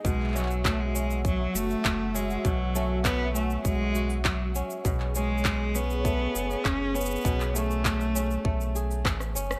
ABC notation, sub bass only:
X:1
M:4/4
L:1/8
Q:1/4=100
K:F#dor
V:1 name="Sub bass" clef=bass
B,,,4- B,,, F,,, F,,,2 | B,,,4 B,,,3 z | B,,,4- B,,, F,,, F,,,2 | B,,,4 B,,,2 A,,, F,,, |]